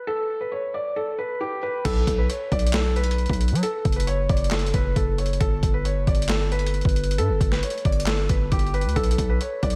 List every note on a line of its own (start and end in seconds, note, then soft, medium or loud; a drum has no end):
0.07 0.39 A4 loud
0.41 0.51 B4 medium
0.52 0.72 C#5 medium
0.74 0.95 D5 medium
0.96 1.17 A4 medium
1.18 1.39 B4 medium
1.41 1.61 G4 medium
1.63 1.83 B4 medium
1.85 2.06 B1 loud
1.85 2.16 A4 loud
1.85 kick loud
1.85 closed hi-hat medium
1.85 crash loud
2.07 2.29 B1 loud
2.07 kick loud
2.07 closed hi-hat medium
2.18 2.29 B4 medium
2.29 2.50 C#5 medium
2.29 closed hi-hat medium
2.52 3.26 B1 loud
2.52 2.72 D5 medium
2.52 kick loud
2.52 closed hi-hat soft
2.59 closed hi-hat medium
2.67 closed hi-hat medium
2.73 2.95 A4 medium
2.73 snare loud
2.73 clap loud
2.73 closed hi-hat medium
2.96 3.59 B4 medium
2.96 closed hi-hat soft
3.04 closed hi-hat medium
3.11 closed hi-hat medium
3.18 closed hi-hat soft
3.26 3.53 B1 loud
3.26 kick medium
3.26 closed hi-hat soft
3.33 closed hi-hat medium
3.41 closed hi-hat medium
3.48 3.62 F#3 loud
3.48 closed hi-hat medium
3.55 closed hi-hat medium
3.63 3.94 A4 loud
3.63 closed hi-hat medium
3.85 4.28 F#1 loud
3.85 kick loud
3.85 closed hi-hat soft
3.92 4.06 B4 medium
3.92 closed hi-hat medium
4.00 closed hi-hat medium
4.07 4.28 C#5 medium
4.07 closed hi-hat medium
4.29 4.72 F#1 loud
4.29 4.50 D5 medium
4.29 kick loud
4.29 closed hi-hat soft
4.37 closed hi-hat medium
4.44 closed hi-hat medium
4.51 4.72 A4 medium
4.51 snare loud
4.51 clap loud
4.51 closed hi-hat medium
4.59 closed hi-hat medium
4.67 closed hi-hat medium
4.74 4.95 F#1 loud
4.74 4.95 B4 medium
4.74 kick loud
4.74 closed hi-hat medium
4.96 5.39 F#1 loud
4.96 5.17 A4 medium
4.96 kick loud
4.96 closed hi-hat medium
5.18 5.39 C#5 medium
5.18 closed hi-hat medium
5.26 closed hi-hat medium
5.33 closed hi-hat medium
5.40 5.62 G1 loud
5.40 5.72 A4 loud
5.40 kick loud
5.40 closed hi-hat medium
5.63 5.98 G1 loud
5.63 kick loud
5.63 closed hi-hat medium
5.74 5.84 B4 medium
5.85 6.06 C#5 medium
5.85 closed hi-hat medium
5.96 6.07 F#1 loud
6.07 6.82 G1 loud
6.07 6.28 D5 medium
6.07 kick loud
6.07 closed hi-hat soft
6.15 closed hi-hat medium
6.22 closed hi-hat medium
6.29 6.50 A4 medium
6.29 snare loud
6.29 clap loud
6.29 closed hi-hat medium
6.52 7.14 B4 medium
6.52 closed hi-hat soft
6.59 closed hi-hat medium
6.67 closed hi-hat medium
6.74 closed hi-hat soft
6.81 7.20 G1 loud
6.81 kick medium
6.81 closed hi-hat soft
6.89 closed hi-hat medium
6.96 closed hi-hat medium
7.04 closed hi-hat medium
7.11 closed hi-hat medium
7.18 7.31 G2 loud
7.18 7.50 A4 loud
7.18 closed hi-hat medium
7.29 7.40 G1 loud
7.41 7.62 G1 loud
7.41 kick loud
7.41 closed hi-hat medium
7.52 7.62 B4 medium
7.52 snare medium
7.63 7.83 C#5 medium
7.63 closed hi-hat medium
7.70 closed hi-hat medium
7.78 closed hi-hat soft
7.85 8.28 G1 loud
7.85 8.06 D5 medium
7.85 kick loud
7.85 closed hi-hat soft
7.92 closed hi-hat medium
8.00 closed hi-hat medium
8.06 8.28 A4 medium
8.06 snare loud
8.06 clap loud
8.06 closed hi-hat medium
8.29 8.51 G1 loud
8.29 8.50 B4 medium
8.29 kick loud
8.29 closed hi-hat medium
8.52 8.87 G1 loud
8.52 8.72 G4 medium
8.52 kick loud
8.52 closed hi-hat medium
8.59 closed hi-hat medium
8.67 closed hi-hat soft
8.74 8.95 B4 medium
8.74 closed hi-hat soft
8.81 8.96 D2 loud
8.81 closed hi-hat medium
8.89 closed hi-hat medium
8.96 9.17 B1 loud
8.96 9.27 A4 loud
8.96 kick loud
8.96 closed hi-hat medium
9.04 closed hi-hat medium
9.11 closed hi-hat medium
9.18 9.40 B1 loud
9.18 kick loud
9.18 closed hi-hat medium
9.30 9.40 B4 medium
9.41 9.61 C#5 medium
9.41 closed hi-hat medium
9.63 9.76 B1 loud
9.63 9.76 D5 medium
9.63 kick loud
9.63 closed hi-hat soft
9.70 closed hi-hat medium